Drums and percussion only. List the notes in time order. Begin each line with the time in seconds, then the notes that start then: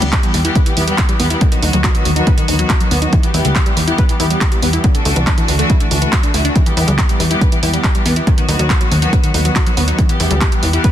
0.02 closed hi-hat
0.13 kick, clap, closed hi-hat
0.23 closed hi-hat
0.34 open hi-hat
0.45 closed hi-hat
0.55 kick, closed hi-hat
0.66 closed hi-hat
0.77 open hi-hat
0.88 closed hi-hat
0.98 kick, clap, closed hi-hat
1.09 closed hi-hat
1.20 open hi-hat
1.30 closed hi-hat
1.41 kick, closed hi-hat
1.52 closed hi-hat
1.62 open hi-hat
1.73 closed hi-hat
1.84 kick, clap, closed hi-hat
1.95 closed hi-hat
2.05 open hi-hat
2.16 closed hi-hat
2.27 kick, closed hi-hat
2.38 closed hi-hat
2.48 open hi-hat
2.59 closed hi-hat
2.70 kick, clap, closed hi-hat
2.80 closed hi-hat
2.91 open hi-hat
3.02 closed hi-hat
3.13 kick, closed hi-hat
3.23 closed hi-hat
3.34 open hi-hat
3.45 closed hi-hat
3.56 kick, clap, closed hi-hat
3.66 closed hi-hat
3.77 open hi-hat
3.88 closed hi-hat
3.98 kick, closed hi-hat
4.09 closed hi-hat
4.20 open hi-hat
4.30 closed hi-hat
4.41 kick, clap, closed hi-hat
4.52 closed hi-hat
4.62 open hi-hat
4.73 closed hi-hat
4.84 kick, closed hi-hat
4.95 closed hi-hat
5.05 open hi-hat
5.16 closed hi-hat
5.27 kick, clap, closed hi-hat
5.38 closed hi-hat
5.48 open hi-hat
5.59 closed hi-hat
5.70 kick, closed hi-hat
5.80 closed hi-hat
5.91 open hi-hat
6.02 closed hi-hat
6.13 kick, clap, closed hi-hat
6.23 closed hi-hat
6.34 open hi-hat
6.45 closed hi-hat
6.56 kick, closed hi-hat
6.66 closed hi-hat
6.77 open hi-hat
6.88 closed hi-hat
6.98 kick, clap, closed hi-hat
7.09 closed hi-hat
7.20 open hi-hat
7.31 closed hi-hat
7.41 kick, closed hi-hat
7.52 closed hi-hat
7.63 open hi-hat
7.74 closed hi-hat
7.84 kick, clap, closed hi-hat
7.95 closed hi-hat
8.06 open hi-hat
8.16 closed hi-hat
8.27 kick, closed hi-hat
8.38 closed hi-hat
8.49 open hi-hat
8.59 closed hi-hat
8.70 kick, clap, closed hi-hat
8.81 closed hi-hat
8.92 open hi-hat
9.02 closed hi-hat
9.13 kick, closed hi-hat
9.24 closed hi-hat
9.34 open hi-hat
9.45 closed hi-hat
9.56 kick, clap, closed hi-hat
9.66 closed hi-hat
9.77 open hi-hat
9.88 closed hi-hat
9.99 kick, closed hi-hat
10.09 closed hi-hat
10.20 open hi-hat
10.31 closed hi-hat
10.41 kick, clap, closed hi-hat
10.52 closed hi-hat
10.63 open hi-hat
10.73 closed hi-hat
10.84 kick, closed hi-hat